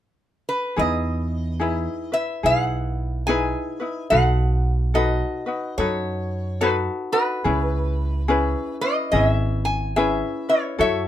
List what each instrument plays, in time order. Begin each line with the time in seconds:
0.49 resonator guitar played with a steel bar B4
0.76 upright bass E2, ukulele D#4 E4 G#4 B4, resonator guitar played with a steel bar D#5
1.60 ukulele D#4 E4 G#4 B4
2.12 ukulele E4 B4, resonator guitar played with a steel bar E5
2.43 upright bass B1, ukulele D#4 E4 G#4 B4, resonator guitar played with a steel bar F#5
3.27 ukulele D#4 E4 G#4 B4, resonator guitar played with a steel bar G#5
3.80 ukulele D#4 E4 B4
4.10 upright bass B1, ukulele D#4 F#4 A4 B4, resonator guitar played with a steel bar F#5
4.94 ukulele D#4 F#4 A4 B4, resonator guitar played with a steel bar D#5
5.46 ukulele D#4 F#4 B4
5.78 upright bass F#2, ukulele D#4 F#4 A4 B4, resonator guitar played with a steel bar C#5
6.61 ukulele D#4 F#4 A4 B4, resonator guitar played with a steel bar B4
7.12 ukulele D#4 F#4 B4, resonator guitar played with a steel bar B4
7.44 upright bass C#2, ukulele C#4 E4 G#4 B4
8.28 ukulele C#4 E4 G#4 B4
8.81 ukulele C#4 E4 B4, resonator guitar played with a steel bar D#5
9.12 upright bass G#1, ukulele C#4 E4 G#4 B4, resonator guitar played with a steel bar D#5
9.25 resonator guitar played with a steel bar E5
9.65 resonator guitar played with a steel bar G#5
9.96 ukulele C#4 E4 G#4 B4, resonator guitar played with a steel bar E5
10.49 ukulele C#4 E4 B4, resonator guitar played with a steel bar C#5
10.79 upright bass F#2, ukulele E4 F#4 A4 C#5, resonator guitar played with a steel bar E5